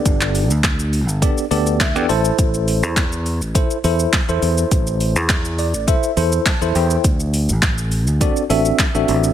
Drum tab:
HH |x-o-x-o-x-o-x-o-|x-o-x-o-x-o-x-o-|x-o-x-o-x-o-x-o-|x-o-x-o-x-o-x-o-|
SH |xxxxxxxxxxxxxxxx|xxxxxxxxxxxxxxxx|xxxxxxxxxxxxxxxx|xxxxxxxxxxxxxxxx|
CP |-x--x-------x---|----x-------x---|----x-------x---|----x-------x---|
SD |----o-------o---|----o-------o---|----o-------o---|----o-------o---|
BD |o---o---o---o---|o---o---o---o---|o---o---o---o---|o---o---o---o---|